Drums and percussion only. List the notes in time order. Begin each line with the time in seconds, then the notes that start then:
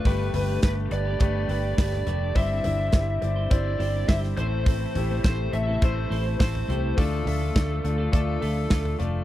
0.05 kick, hi-hat pedal, open hi-hat
0.34 floor tom, hi-hat pedal, open hi-hat
0.62 kick, snare, hi-hat pedal, open hi-hat
0.91 hi-hat pedal, open hi-hat
1.20 kick, hi-hat pedal, open hi-hat
1.49 hi-hat pedal, open hi-hat
1.78 kick, snare, hi-hat pedal, open hi-hat
1.92 snare, floor tom
2.07 floor tom, hi-hat pedal, open hi-hat
2.36 kick, hi-hat pedal, open hi-hat
2.64 floor tom, hi-hat pedal, open hi-hat
2.92 kick, snare, hi-hat pedal, open hi-hat
3.22 hi-hat pedal, open hi-hat
3.51 kick, hi-hat pedal, open hi-hat
3.80 hi-hat pedal, open hi-hat
4.09 kick, snare, hi-hat pedal, open hi-hat
4.23 snare
4.37 floor tom, hi-hat pedal, open hi-hat
4.66 kick, hi-hat pedal, open hi-hat
4.95 floor tom, hi-hat pedal, open hi-hat
5.24 kick, snare, hi-hat pedal, open hi-hat
5.53 hi-hat pedal, open hi-hat
5.82 kick, hi-hat pedal, open hi-hat
6.12 hi-hat pedal, open hi-hat
6.40 kick, snare, hi-hat pedal, open hi-hat
6.55 floor tom
6.70 floor tom, hi-hat pedal, open hi-hat
6.98 kick, hi-hat pedal, open hi-hat
7.27 floor tom, hi-hat pedal, open hi-hat
7.56 kick, snare, hi-hat pedal, open hi-hat
7.85 hi-hat pedal, open hi-hat
8.13 kick, hi-hat pedal, open hi-hat
8.42 hi-hat pedal, open hi-hat
8.70 kick, snare, hi-hat pedal, open hi-hat
8.85 floor tom
9.00 floor tom, hi-hat pedal, open hi-hat